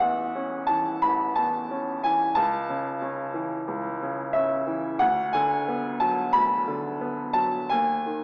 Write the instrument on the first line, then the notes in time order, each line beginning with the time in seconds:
upright piano
Already playing: A1 E5
0.00 E2 F#5
0.35 C#4
0.67 E3 A5
1.02 A1 B5
1.35 E2 A5
1.71 C#4
2.03 E3 G#5
2.35 C#2 A5
2.70 C#3
3.02 C#4
3.34 E3
3.68 C#2
4.02 C#3
4.33 C#4 E5
4.67 E3
4.99 D2 F#5
5.33 D3 G#5
5.68 B3
6.00 F#3 A5
6.33 D2 B5
6.67 D3
7.01 B3
7.34 F#3 A5
7.70 D#2 G#5
8.06 D#3